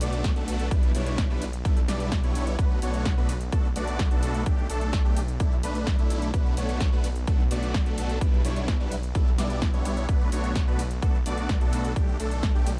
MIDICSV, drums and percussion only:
0, 0, Header, 1, 2, 480
1, 0, Start_track
1, 0, Key_signature, 2, "minor"
1, 0, Tempo, 468750
1, 730, Time_signature, 4, 2, 24, 8
1, 13105, End_track
2, 0, Start_track
2, 0, Title_t, "Drums"
2, 9, Note_on_c, 9, 46, 105
2, 9, Note_on_c, 9, 51, 86
2, 16, Note_on_c, 9, 69, 89
2, 111, Note_off_c, 9, 46, 0
2, 111, Note_off_c, 9, 51, 0
2, 118, Note_off_c, 9, 69, 0
2, 130, Note_on_c, 9, 42, 55
2, 136, Note_on_c, 9, 69, 36
2, 232, Note_off_c, 9, 42, 0
2, 239, Note_off_c, 9, 69, 0
2, 248, Note_on_c, 9, 38, 119
2, 249, Note_on_c, 9, 42, 86
2, 250, Note_on_c, 9, 36, 121
2, 255, Note_on_c, 9, 69, 51
2, 350, Note_off_c, 9, 38, 0
2, 351, Note_off_c, 9, 42, 0
2, 352, Note_off_c, 9, 36, 0
2, 358, Note_off_c, 9, 69, 0
2, 369, Note_on_c, 9, 42, 37
2, 376, Note_on_c, 9, 69, 23
2, 472, Note_off_c, 9, 42, 0
2, 478, Note_off_c, 9, 69, 0
2, 489, Note_on_c, 9, 46, 89
2, 489, Note_on_c, 9, 51, 82
2, 496, Note_on_c, 9, 69, 82
2, 592, Note_off_c, 9, 46, 0
2, 592, Note_off_c, 9, 51, 0
2, 599, Note_off_c, 9, 69, 0
2, 609, Note_on_c, 9, 42, 55
2, 616, Note_on_c, 9, 69, 37
2, 711, Note_off_c, 9, 42, 0
2, 718, Note_off_c, 9, 69, 0
2, 729, Note_on_c, 9, 42, 84
2, 730, Note_on_c, 9, 36, 126
2, 736, Note_on_c, 9, 69, 49
2, 832, Note_off_c, 9, 36, 0
2, 832, Note_off_c, 9, 42, 0
2, 838, Note_off_c, 9, 69, 0
2, 849, Note_on_c, 9, 42, 39
2, 856, Note_on_c, 9, 69, 24
2, 952, Note_off_c, 9, 42, 0
2, 958, Note_off_c, 9, 69, 0
2, 970, Note_on_c, 9, 46, 101
2, 970, Note_on_c, 9, 51, 79
2, 976, Note_on_c, 9, 69, 84
2, 1072, Note_off_c, 9, 46, 0
2, 1072, Note_off_c, 9, 51, 0
2, 1079, Note_off_c, 9, 69, 0
2, 1090, Note_on_c, 9, 42, 54
2, 1096, Note_on_c, 9, 69, 35
2, 1192, Note_off_c, 9, 42, 0
2, 1199, Note_off_c, 9, 69, 0
2, 1209, Note_on_c, 9, 38, 127
2, 1210, Note_on_c, 9, 36, 121
2, 1210, Note_on_c, 9, 42, 86
2, 1217, Note_on_c, 9, 69, 47
2, 1312, Note_off_c, 9, 36, 0
2, 1312, Note_off_c, 9, 38, 0
2, 1312, Note_off_c, 9, 42, 0
2, 1319, Note_off_c, 9, 69, 0
2, 1337, Note_on_c, 9, 69, 23
2, 1439, Note_off_c, 9, 69, 0
2, 1450, Note_on_c, 9, 46, 91
2, 1450, Note_on_c, 9, 51, 77
2, 1457, Note_on_c, 9, 69, 82
2, 1552, Note_off_c, 9, 46, 0
2, 1552, Note_off_c, 9, 51, 0
2, 1559, Note_off_c, 9, 69, 0
2, 1569, Note_on_c, 9, 42, 55
2, 1576, Note_on_c, 9, 69, 33
2, 1672, Note_off_c, 9, 42, 0
2, 1678, Note_off_c, 9, 69, 0
2, 1689, Note_on_c, 9, 36, 125
2, 1690, Note_on_c, 9, 42, 81
2, 1697, Note_on_c, 9, 69, 48
2, 1792, Note_off_c, 9, 36, 0
2, 1792, Note_off_c, 9, 42, 0
2, 1799, Note_off_c, 9, 69, 0
2, 1809, Note_on_c, 9, 42, 43
2, 1816, Note_on_c, 9, 69, 26
2, 1912, Note_off_c, 9, 42, 0
2, 1918, Note_off_c, 9, 69, 0
2, 1929, Note_on_c, 9, 38, 68
2, 1929, Note_on_c, 9, 46, 110
2, 1929, Note_on_c, 9, 51, 82
2, 1936, Note_on_c, 9, 69, 88
2, 2031, Note_off_c, 9, 38, 0
2, 2032, Note_off_c, 9, 46, 0
2, 2032, Note_off_c, 9, 51, 0
2, 2038, Note_off_c, 9, 69, 0
2, 2049, Note_on_c, 9, 42, 56
2, 2056, Note_on_c, 9, 69, 34
2, 2152, Note_off_c, 9, 42, 0
2, 2158, Note_off_c, 9, 69, 0
2, 2169, Note_on_c, 9, 36, 116
2, 2169, Note_on_c, 9, 38, 120
2, 2169, Note_on_c, 9, 42, 86
2, 2176, Note_on_c, 9, 69, 49
2, 2271, Note_off_c, 9, 38, 0
2, 2272, Note_off_c, 9, 36, 0
2, 2272, Note_off_c, 9, 42, 0
2, 2278, Note_off_c, 9, 69, 0
2, 2289, Note_on_c, 9, 42, 39
2, 2296, Note_on_c, 9, 69, 23
2, 2392, Note_off_c, 9, 42, 0
2, 2399, Note_off_c, 9, 69, 0
2, 2409, Note_on_c, 9, 46, 93
2, 2409, Note_on_c, 9, 51, 75
2, 2416, Note_on_c, 9, 69, 83
2, 2512, Note_off_c, 9, 46, 0
2, 2512, Note_off_c, 9, 51, 0
2, 2519, Note_off_c, 9, 69, 0
2, 2529, Note_on_c, 9, 42, 59
2, 2536, Note_on_c, 9, 69, 36
2, 2631, Note_off_c, 9, 42, 0
2, 2638, Note_off_c, 9, 69, 0
2, 2649, Note_on_c, 9, 36, 127
2, 2649, Note_on_c, 9, 42, 82
2, 2656, Note_on_c, 9, 69, 47
2, 2751, Note_off_c, 9, 42, 0
2, 2752, Note_off_c, 9, 36, 0
2, 2758, Note_off_c, 9, 69, 0
2, 2775, Note_on_c, 9, 69, 23
2, 2878, Note_off_c, 9, 69, 0
2, 2889, Note_on_c, 9, 46, 106
2, 2889, Note_on_c, 9, 51, 74
2, 2896, Note_on_c, 9, 69, 79
2, 2991, Note_off_c, 9, 46, 0
2, 2991, Note_off_c, 9, 51, 0
2, 2998, Note_off_c, 9, 69, 0
2, 3009, Note_on_c, 9, 42, 55
2, 3016, Note_on_c, 9, 69, 35
2, 3111, Note_off_c, 9, 42, 0
2, 3118, Note_off_c, 9, 69, 0
2, 3128, Note_on_c, 9, 38, 127
2, 3129, Note_on_c, 9, 36, 123
2, 3129, Note_on_c, 9, 42, 85
2, 3136, Note_on_c, 9, 69, 46
2, 3231, Note_off_c, 9, 38, 0
2, 3231, Note_off_c, 9, 42, 0
2, 3232, Note_off_c, 9, 36, 0
2, 3238, Note_off_c, 9, 69, 0
2, 3256, Note_on_c, 9, 69, 23
2, 3358, Note_off_c, 9, 69, 0
2, 3369, Note_on_c, 9, 46, 93
2, 3369, Note_on_c, 9, 51, 77
2, 3375, Note_on_c, 9, 69, 84
2, 3471, Note_off_c, 9, 46, 0
2, 3471, Note_off_c, 9, 51, 0
2, 3478, Note_off_c, 9, 69, 0
2, 3488, Note_on_c, 9, 42, 54
2, 3495, Note_on_c, 9, 69, 33
2, 3591, Note_off_c, 9, 42, 0
2, 3598, Note_off_c, 9, 69, 0
2, 3608, Note_on_c, 9, 42, 82
2, 3609, Note_on_c, 9, 36, 127
2, 3615, Note_on_c, 9, 69, 45
2, 3711, Note_off_c, 9, 42, 0
2, 3712, Note_off_c, 9, 36, 0
2, 3718, Note_off_c, 9, 69, 0
2, 3735, Note_on_c, 9, 69, 25
2, 3838, Note_off_c, 9, 69, 0
2, 3848, Note_on_c, 9, 46, 112
2, 3848, Note_on_c, 9, 51, 82
2, 3855, Note_on_c, 9, 69, 83
2, 3951, Note_off_c, 9, 46, 0
2, 3951, Note_off_c, 9, 51, 0
2, 3958, Note_off_c, 9, 69, 0
2, 3968, Note_on_c, 9, 42, 58
2, 3975, Note_on_c, 9, 69, 34
2, 4071, Note_off_c, 9, 42, 0
2, 4077, Note_off_c, 9, 69, 0
2, 4088, Note_on_c, 9, 38, 127
2, 4089, Note_on_c, 9, 42, 85
2, 4090, Note_on_c, 9, 36, 121
2, 4095, Note_on_c, 9, 69, 47
2, 4190, Note_off_c, 9, 38, 0
2, 4191, Note_off_c, 9, 42, 0
2, 4192, Note_off_c, 9, 36, 0
2, 4198, Note_off_c, 9, 69, 0
2, 4209, Note_on_c, 9, 42, 39
2, 4216, Note_on_c, 9, 69, 22
2, 4311, Note_off_c, 9, 42, 0
2, 4318, Note_off_c, 9, 69, 0
2, 4328, Note_on_c, 9, 46, 89
2, 4328, Note_on_c, 9, 51, 74
2, 4335, Note_on_c, 9, 69, 79
2, 4430, Note_off_c, 9, 46, 0
2, 4430, Note_off_c, 9, 51, 0
2, 4437, Note_off_c, 9, 69, 0
2, 4449, Note_on_c, 9, 42, 57
2, 4456, Note_on_c, 9, 69, 35
2, 4551, Note_off_c, 9, 42, 0
2, 4558, Note_off_c, 9, 69, 0
2, 4568, Note_on_c, 9, 42, 86
2, 4570, Note_on_c, 9, 36, 127
2, 4575, Note_on_c, 9, 69, 45
2, 4671, Note_off_c, 9, 42, 0
2, 4672, Note_off_c, 9, 36, 0
2, 4677, Note_off_c, 9, 69, 0
2, 4695, Note_on_c, 9, 69, 22
2, 4798, Note_off_c, 9, 69, 0
2, 4809, Note_on_c, 9, 46, 112
2, 4809, Note_on_c, 9, 51, 79
2, 4815, Note_on_c, 9, 69, 79
2, 4911, Note_off_c, 9, 46, 0
2, 4911, Note_off_c, 9, 51, 0
2, 4918, Note_off_c, 9, 69, 0
2, 4928, Note_on_c, 9, 42, 55
2, 4935, Note_on_c, 9, 69, 35
2, 5031, Note_off_c, 9, 42, 0
2, 5038, Note_off_c, 9, 69, 0
2, 5048, Note_on_c, 9, 38, 127
2, 5049, Note_on_c, 9, 42, 87
2, 5050, Note_on_c, 9, 36, 127
2, 5055, Note_on_c, 9, 69, 46
2, 5150, Note_off_c, 9, 38, 0
2, 5151, Note_off_c, 9, 42, 0
2, 5152, Note_off_c, 9, 36, 0
2, 5158, Note_off_c, 9, 69, 0
2, 5175, Note_on_c, 9, 69, 23
2, 5278, Note_off_c, 9, 69, 0
2, 5289, Note_on_c, 9, 46, 96
2, 5289, Note_on_c, 9, 51, 75
2, 5296, Note_on_c, 9, 69, 74
2, 5392, Note_off_c, 9, 46, 0
2, 5392, Note_off_c, 9, 51, 0
2, 5398, Note_off_c, 9, 69, 0
2, 5410, Note_on_c, 9, 42, 51
2, 5416, Note_on_c, 9, 69, 33
2, 5512, Note_off_c, 9, 42, 0
2, 5519, Note_off_c, 9, 69, 0
2, 5529, Note_on_c, 9, 42, 82
2, 5530, Note_on_c, 9, 36, 127
2, 5536, Note_on_c, 9, 69, 44
2, 5631, Note_off_c, 9, 42, 0
2, 5633, Note_off_c, 9, 36, 0
2, 5638, Note_off_c, 9, 69, 0
2, 5656, Note_on_c, 9, 69, 25
2, 5758, Note_off_c, 9, 69, 0
2, 5769, Note_on_c, 9, 46, 116
2, 5769, Note_on_c, 9, 51, 80
2, 5775, Note_on_c, 9, 69, 84
2, 5871, Note_off_c, 9, 46, 0
2, 5871, Note_off_c, 9, 51, 0
2, 5878, Note_off_c, 9, 69, 0
2, 5890, Note_on_c, 9, 42, 57
2, 5896, Note_on_c, 9, 69, 33
2, 5992, Note_off_c, 9, 42, 0
2, 5999, Note_off_c, 9, 69, 0
2, 6009, Note_on_c, 9, 38, 127
2, 6009, Note_on_c, 9, 42, 84
2, 6010, Note_on_c, 9, 36, 127
2, 6016, Note_on_c, 9, 69, 46
2, 6111, Note_off_c, 9, 38, 0
2, 6112, Note_off_c, 9, 36, 0
2, 6112, Note_off_c, 9, 42, 0
2, 6119, Note_off_c, 9, 69, 0
2, 6130, Note_on_c, 9, 42, 37
2, 6137, Note_on_c, 9, 69, 21
2, 6232, Note_off_c, 9, 42, 0
2, 6239, Note_off_c, 9, 69, 0
2, 6250, Note_on_c, 9, 46, 97
2, 6250, Note_on_c, 9, 51, 77
2, 6256, Note_on_c, 9, 69, 76
2, 6352, Note_off_c, 9, 46, 0
2, 6352, Note_off_c, 9, 51, 0
2, 6359, Note_off_c, 9, 69, 0
2, 6370, Note_on_c, 9, 42, 54
2, 6377, Note_on_c, 9, 69, 35
2, 6472, Note_off_c, 9, 42, 0
2, 6479, Note_off_c, 9, 69, 0
2, 6490, Note_on_c, 9, 36, 127
2, 6490, Note_on_c, 9, 42, 84
2, 6496, Note_on_c, 9, 69, 46
2, 6592, Note_off_c, 9, 36, 0
2, 6592, Note_off_c, 9, 42, 0
2, 6599, Note_off_c, 9, 69, 0
2, 6616, Note_on_c, 9, 69, 23
2, 6719, Note_off_c, 9, 69, 0
2, 6729, Note_on_c, 9, 46, 115
2, 6729, Note_on_c, 9, 51, 78
2, 6736, Note_on_c, 9, 69, 72
2, 6832, Note_off_c, 9, 46, 0
2, 6832, Note_off_c, 9, 51, 0
2, 6839, Note_off_c, 9, 69, 0
2, 6850, Note_on_c, 9, 42, 53
2, 6856, Note_on_c, 9, 69, 32
2, 6952, Note_off_c, 9, 42, 0
2, 6959, Note_off_c, 9, 69, 0
2, 6969, Note_on_c, 9, 38, 127
2, 6969, Note_on_c, 9, 42, 81
2, 6970, Note_on_c, 9, 36, 125
2, 6976, Note_on_c, 9, 69, 45
2, 7071, Note_off_c, 9, 38, 0
2, 7072, Note_off_c, 9, 36, 0
2, 7072, Note_off_c, 9, 42, 0
2, 7078, Note_off_c, 9, 69, 0
2, 7096, Note_on_c, 9, 69, 22
2, 7198, Note_off_c, 9, 69, 0
2, 7209, Note_on_c, 9, 46, 95
2, 7209, Note_on_c, 9, 51, 78
2, 7216, Note_on_c, 9, 69, 79
2, 7311, Note_off_c, 9, 46, 0
2, 7311, Note_off_c, 9, 51, 0
2, 7318, Note_off_c, 9, 69, 0
2, 7329, Note_on_c, 9, 42, 50
2, 7336, Note_on_c, 9, 69, 33
2, 7431, Note_off_c, 9, 42, 0
2, 7438, Note_off_c, 9, 69, 0
2, 7449, Note_on_c, 9, 42, 78
2, 7450, Note_on_c, 9, 36, 127
2, 7456, Note_on_c, 9, 69, 43
2, 7551, Note_off_c, 9, 42, 0
2, 7552, Note_off_c, 9, 36, 0
2, 7558, Note_off_c, 9, 69, 0
2, 7576, Note_on_c, 9, 69, 24
2, 7679, Note_off_c, 9, 69, 0
2, 7690, Note_on_c, 9, 46, 121
2, 7690, Note_on_c, 9, 51, 82
2, 7696, Note_on_c, 9, 69, 81
2, 7792, Note_off_c, 9, 46, 0
2, 7792, Note_off_c, 9, 51, 0
2, 7799, Note_off_c, 9, 69, 0
2, 7810, Note_on_c, 9, 42, 51
2, 7817, Note_on_c, 9, 69, 32
2, 7912, Note_off_c, 9, 42, 0
2, 7919, Note_off_c, 9, 69, 0
2, 7929, Note_on_c, 9, 38, 127
2, 7930, Note_on_c, 9, 36, 127
2, 7930, Note_on_c, 9, 42, 82
2, 7937, Note_on_c, 9, 69, 44
2, 8032, Note_off_c, 9, 36, 0
2, 8032, Note_off_c, 9, 38, 0
2, 8032, Note_off_c, 9, 42, 0
2, 8039, Note_off_c, 9, 69, 0
2, 8049, Note_on_c, 9, 42, 37
2, 8056, Note_on_c, 9, 69, 21
2, 8152, Note_off_c, 9, 42, 0
2, 8158, Note_off_c, 9, 69, 0
2, 8169, Note_on_c, 9, 46, 102
2, 8169, Note_on_c, 9, 51, 78
2, 8176, Note_on_c, 9, 69, 73
2, 8272, Note_off_c, 9, 46, 0
2, 8272, Note_off_c, 9, 51, 0
2, 8278, Note_off_c, 9, 69, 0
2, 8290, Note_on_c, 9, 42, 54
2, 8297, Note_on_c, 9, 69, 33
2, 8392, Note_off_c, 9, 42, 0
2, 8399, Note_off_c, 9, 69, 0
2, 8410, Note_on_c, 9, 36, 127
2, 8410, Note_on_c, 9, 42, 79
2, 8417, Note_on_c, 9, 69, 47
2, 8512, Note_off_c, 9, 42, 0
2, 8513, Note_off_c, 9, 36, 0
2, 8519, Note_off_c, 9, 69, 0
2, 8536, Note_on_c, 9, 69, 21
2, 8639, Note_off_c, 9, 69, 0
2, 8649, Note_on_c, 9, 46, 110
2, 8649, Note_on_c, 9, 51, 78
2, 8656, Note_on_c, 9, 69, 77
2, 8752, Note_off_c, 9, 46, 0
2, 8752, Note_off_c, 9, 51, 0
2, 8759, Note_off_c, 9, 69, 0
2, 8769, Note_on_c, 9, 42, 52
2, 8776, Note_on_c, 9, 69, 31
2, 8872, Note_off_c, 9, 42, 0
2, 8878, Note_off_c, 9, 69, 0
2, 8889, Note_on_c, 9, 38, 118
2, 8890, Note_on_c, 9, 36, 126
2, 8890, Note_on_c, 9, 42, 78
2, 8896, Note_on_c, 9, 69, 45
2, 8991, Note_off_c, 9, 38, 0
2, 8992, Note_off_c, 9, 36, 0
2, 8992, Note_off_c, 9, 42, 0
2, 8999, Note_off_c, 9, 69, 0
2, 9016, Note_on_c, 9, 69, 22
2, 9118, Note_off_c, 9, 69, 0
2, 9129, Note_on_c, 9, 46, 97
2, 9129, Note_on_c, 9, 51, 84
2, 9136, Note_on_c, 9, 69, 80
2, 9232, Note_off_c, 9, 46, 0
2, 9232, Note_off_c, 9, 51, 0
2, 9239, Note_off_c, 9, 69, 0
2, 9249, Note_on_c, 9, 42, 51
2, 9256, Note_on_c, 9, 69, 32
2, 9352, Note_off_c, 9, 42, 0
2, 9359, Note_off_c, 9, 69, 0
2, 9369, Note_on_c, 9, 42, 75
2, 9370, Note_on_c, 9, 36, 127
2, 9376, Note_on_c, 9, 69, 42
2, 9472, Note_off_c, 9, 36, 0
2, 9472, Note_off_c, 9, 42, 0
2, 9478, Note_off_c, 9, 69, 0
2, 9496, Note_on_c, 9, 69, 23
2, 9599, Note_off_c, 9, 69, 0
2, 9609, Note_on_c, 9, 38, 65
2, 9610, Note_on_c, 9, 46, 122
2, 9610, Note_on_c, 9, 51, 88
2, 9616, Note_on_c, 9, 69, 80
2, 9711, Note_off_c, 9, 38, 0
2, 9712, Note_off_c, 9, 46, 0
2, 9712, Note_off_c, 9, 51, 0
2, 9719, Note_off_c, 9, 69, 0
2, 9729, Note_on_c, 9, 42, 51
2, 9736, Note_on_c, 9, 69, 33
2, 9832, Note_off_c, 9, 42, 0
2, 9838, Note_off_c, 9, 69, 0
2, 9849, Note_on_c, 9, 38, 127
2, 9850, Note_on_c, 9, 36, 127
2, 9850, Note_on_c, 9, 42, 79
2, 9857, Note_on_c, 9, 69, 45
2, 9952, Note_off_c, 9, 36, 0
2, 9952, Note_off_c, 9, 38, 0
2, 9952, Note_off_c, 9, 42, 0
2, 9959, Note_off_c, 9, 69, 0
2, 9970, Note_on_c, 9, 42, 34
2, 9977, Note_on_c, 9, 69, 21
2, 10073, Note_off_c, 9, 42, 0
2, 10079, Note_off_c, 9, 69, 0
2, 10090, Note_on_c, 9, 46, 96
2, 10090, Note_on_c, 9, 51, 81
2, 10097, Note_on_c, 9, 69, 75
2, 10192, Note_off_c, 9, 46, 0
2, 10192, Note_off_c, 9, 51, 0
2, 10199, Note_off_c, 9, 69, 0
2, 10210, Note_on_c, 9, 42, 52
2, 10216, Note_on_c, 9, 69, 34
2, 10312, Note_off_c, 9, 42, 0
2, 10319, Note_off_c, 9, 69, 0
2, 10329, Note_on_c, 9, 42, 80
2, 10330, Note_on_c, 9, 36, 125
2, 10336, Note_on_c, 9, 69, 48
2, 10432, Note_off_c, 9, 36, 0
2, 10432, Note_off_c, 9, 42, 0
2, 10438, Note_off_c, 9, 69, 0
2, 10456, Note_on_c, 9, 69, 23
2, 10558, Note_off_c, 9, 69, 0
2, 10569, Note_on_c, 9, 46, 105
2, 10569, Note_on_c, 9, 51, 81
2, 10576, Note_on_c, 9, 69, 83
2, 10672, Note_off_c, 9, 46, 0
2, 10672, Note_off_c, 9, 51, 0
2, 10678, Note_off_c, 9, 69, 0
2, 10690, Note_on_c, 9, 42, 50
2, 10696, Note_on_c, 9, 69, 35
2, 10792, Note_off_c, 9, 42, 0
2, 10799, Note_off_c, 9, 69, 0
2, 10808, Note_on_c, 9, 38, 118
2, 10809, Note_on_c, 9, 42, 81
2, 10810, Note_on_c, 9, 36, 122
2, 10816, Note_on_c, 9, 69, 47
2, 10911, Note_off_c, 9, 38, 0
2, 10911, Note_off_c, 9, 42, 0
2, 10912, Note_off_c, 9, 36, 0
2, 10918, Note_off_c, 9, 69, 0
2, 10936, Note_on_c, 9, 69, 22
2, 11038, Note_off_c, 9, 69, 0
2, 11049, Note_on_c, 9, 46, 95
2, 11049, Note_on_c, 9, 51, 84
2, 11056, Note_on_c, 9, 69, 84
2, 11152, Note_off_c, 9, 46, 0
2, 11152, Note_off_c, 9, 51, 0
2, 11158, Note_off_c, 9, 69, 0
2, 11169, Note_on_c, 9, 42, 48
2, 11176, Note_on_c, 9, 69, 34
2, 11272, Note_off_c, 9, 42, 0
2, 11278, Note_off_c, 9, 69, 0
2, 11289, Note_on_c, 9, 36, 121
2, 11289, Note_on_c, 9, 42, 76
2, 11296, Note_on_c, 9, 69, 45
2, 11391, Note_off_c, 9, 42, 0
2, 11392, Note_off_c, 9, 36, 0
2, 11398, Note_off_c, 9, 69, 0
2, 11415, Note_on_c, 9, 69, 24
2, 11518, Note_off_c, 9, 69, 0
2, 11529, Note_on_c, 9, 46, 115
2, 11529, Note_on_c, 9, 51, 88
2, 11536, Note_on_c, 9, 69, 85
2, 11632, Note_off_c, 9, 46, 0
2, 11632, Note_off_c, 9, 51, 0
2, 11639, Note_off_c, 9, 69, 0
2, 11649, Note_on_c, 9, 42, 50
2, 11656, Note_on_c, 9, 69, 36
2, 11751, Note_off_c, 9, 42, 0
2, 11758, Note_off_c, 9, 69, 0
2, 11768, Note_on_c, 9, 38, 118
2, 11769, Note_on_c, 9, 36, 126
2, 11769, Note_on_c, 9, 42, 77
2, 11776, Note_on_c, 9, 69, 48
2, 11871, Note_off_c, 9, 38, 0
2, 11872, Note_off_c, 9, 36, 0
2, 11872, Note_off_c, 9, 42, 0
2, 11878, Note_off_c, 9, 69, 0
2, 11889, Note_on_c, 9, 42, 34
2, 11896, Note_on_c, 9, 69, 22
2, 11992, Note_off_c, 9, 42, 0
2, 11998, Note_off_c, 9, 69, 0
2, 12009, Note_on_c, 9, 46, 98
2, 12009, Note_on_c, 9, 51, 86
2, 12016, Note_on_c, 9, 69, 82
2, 12112, Note_off_c, 9, 46, 0
2, 12112, Note_off_c, 9, 51, 0
2, 12119, Note_off_c, 9, 69, 0
2, 12130, Note_on_c, 9, 42, 55
2, 12137, Note_on_c, 9, 69, 36
2, 12232, Note_off_c, 9, 42, 0
2, 12239, Note_off_c, 9, 69, 0
2, 12249, Note_on_c, 9, 36, 126
2, 12250, Note_on_c, 9, 42, 79
2, 12257, Note_on_c, 9, 69, 47
2, 12351, Note_off_c, 9, 36, 0
2, 12352, Note_off_c, 9, 42, 0
2, 12359, Note_off_c, 9, 69, 0
2, 12377, Note_on_c, 9, 69, 24
2, 12479, Note_off_c, 9, 69, 0
2, 12490, Note_on_c, 9, 46, 105
2, 12490, Note_on_c, 9, 51, 81
2, 12496, Note_on_c, 9, 69, 82
2, 12592, Note_off_c, 9, 46, 0
2, 12592, Note_off_c, 9, 51, 0
2, 12599, Note_off_c, 9, 69, 0
2, 12610, Note_on_c, 9, 42, 53
2, 12617, Note_on_c, 9, 69, 35
2, 12712, Note_off_c, 9, 42, 0
2, 12719, Note_off_c, 9, 69, 0
2, 12729, Note_on_c, 9, 36, 122
2, 12729, Note_on_c, 9, 38, 117
2, 12729, Note_on_c, 9, 42, 80
2, 12736, Note_on_c, 9, 69, 50
2, 12831, Note_off_c, 9, 38, 0
2, 12832, Note_off_c, 9, 36, 0
2, 12832, Note_off_c, 9, 42, 0
2, 12839, Note_off_c, 9, 69, 0
2, 12856, Note_on_c, 9, 69, 23
2, 12959, Note_off_c, 9, 69, 0
2, 12969, Note_on_c, 9, 46, 90
2, 12969, Note_on_c, 9, 51, 84
2, 12976, Note_on_c, 9, 69, 87
2, 13072, Note_off_c, 9, 46, 0
2, 13072, Note_off_c, 9, 51, 0
2, 13078, Note_off_c, 9, 69, 0
2, 13105, End_track
0, 0, End_of_file